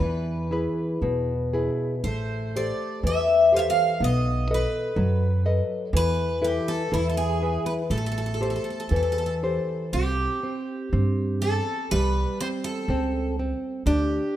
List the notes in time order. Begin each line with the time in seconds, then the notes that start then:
Already playing: B4
0.00 E2 E3
0.51 E4 G#4 B4
1.02 E2 B2
1.53 E4 G#4 B4
2.04 A1 A3 C5
2.56 G4 A4 C5 D5
3.03 E2 E3 E5
3.52 G4 A4 C5
3.56 E5 F5
3.70 F5
4.00 B1 B3 D#5
4.51 A4 B4 D#5
4.96 F#2 F#3
5.45 A4 B4 D#5
5.93 E2 E3 B4
6.42 E4 G4 A4 B4
6.68 A4
6.91 E2 E3 E4
7.10 A4
7.17 G#4
7.42 E4 G#4 B4
7.66 B4
7.90 A1 A3 A4
7.98 A4
8.06 A4
8.12 A4
8.18 A4
8.26 A4
8.34 A4
8.41 G4 A4 C5
8.50 A4
8.56 A4
8.64 A4
8.70 A4
8.80 A4
8.89 E2 E3 A4
8.96 A4
9.03 A4
9.12 A4
9.18 A4
9.26 A4
9.43 G4 A4 C5
9.93 C2 C4 G4
10.43 C4
10.93 G2 C4
11.42 C4 A4
11.91 C2 G3 B4
12.40 C4 C5
12.64 A4
12.88 C#2 C4
13.39 C4
13.86 D2 D4 G4